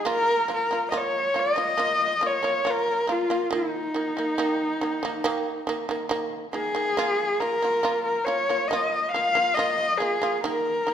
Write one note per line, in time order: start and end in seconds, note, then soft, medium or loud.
0.05 0.40 A#3 medium
0.05 0.41 F4 loud
0.09 0.48 A#4 loud
0.48 0.66 A#3 medium
0.48 0.67 F4 medium
0.54 0.85 A#4 medium
0.71 0.88 A#3 medium
0.71 0.89 F4 medium
0.90 1.27 A#3 medium
0.90 1.27 F4 medium
0.90 0.99 D#5 medium
0.97 1.41 C#5 medium
1.34 1.52 A#3 medium
1.34 1.53 F4 medium
1.40 2.28 D#5 medium
1.56 1.74 A#3 medium
1.56 1.75 F4 medium
1.78 2.13 A#3 medium
1.78 2.13 F4 medium
2.21 2.39 A#3 medium
2.21 2.39 F4 medium
2.26 2.72 C#5 medium
2.43 2.60 A#3 medium
2.43 2.61 F4 medium
2.65 2.99 A#3 medium
2.65 3.00 F4 medium
2.71 3.14 A#4 loud
3.07 3.25 A#3 medium
3.07 3.26 F4 medium
3.12 3.53 F4 medium
3.30 3.47 A#3 medium
3.30 3.48 F4 medium
3.51 3.86 D#3 medium
3.51 3.87 A#3 medium
3.51 6.08 D#4 medium
3.94 4.12 D#3 medium
3.94 4.13 A#3 medium
4.17 4.34 D#3 medium
4.17 4.35 A#3 medium
4.38 4.73 D#3 medium
4.38 4.73 A#3 loud
4.81 4.99 D#3 medium
4.81 4.99 A#3 medium
5.03 5.20 D#3 medium
5.03 5.21 A#3 medium
5.24 5.59 D#3 loud
5.24 5.60 A#3 loud
5.67 5.85 D#3 medium
5.67 5.86 A#3 medium
5.89 6.06 D#3 medium
5.89 6.07 A#3 medium
6.09 6.45 D#3 loud
6.09 6.46 A#3 loud
6.53 6.71 D#3 medium
6.53 6.72 A#3 medium
6.53 7.42 G#4 medium
6.75 6.93 D#3 medium
6.75 6.93 A#3 medium
6.97 7.32 A#3 medium
6.97 7.33 F4 loud
7.40 7.58 A#3 medium
7.40 7.59 F4 medium
7.40 8.04 A#4 medium
7.62 7.80 A#3 medium
7.62 7.81 F4 medium
7.83 8.18 A#3 medium
7.83 8.19 F4 medium
8.05 8.26 A#4 medium
8.25 8.44 A#3 medium
8.25 8.45 F4 medium
8.25 8.70 C#5 medium
8.49 8.67 A#3 medium
8.49 8.67 F4 medium
8.68 9.06 A#3 medium
8.68 9.11 D#5 medium
8.73 9.07 F4 medium
9.12 9.32 A#3 medium
9.12 9.56 F5 loud
9.16 9.32 F4 medium
9.35 9.53 A#3 medium
9.35 9.54 F4 medium
9.54 9.92 A#3 medium
9.54 9.99 D#5 medium
9.59 9.93 F4 medium
9.98 10.18 A#3 medium
9.98 10.19 F4 medium
9.98 10.43 G#4 medium
10.22 10.40 A#3 medium
10.22 10.40 F4 medium
10.44 10.79 D#3 medium
10.44 10.80 A#3 loud
10.44 10.94 A#4 loud
10.87 10.94 D#3 medium
10.87 10.94 A#3 medium